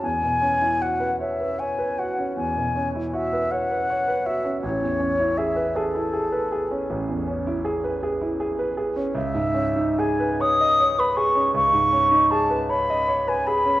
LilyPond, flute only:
\new Staff \with { instrumentName = "Flute" } { \time 12/8 \key a \lydian \tempo 4. = 53 gis''4 fis''8 e''8 gis''8 fis''8 gis''4 e''8 fis''4 e''8 | cis''4 e''8 a'2 r2 r8 | \key cis \minor e''4 gis''8 dis'''8. b''16 cis'''8 cis'''4 a''8 b''8. gis''16 b''8 | }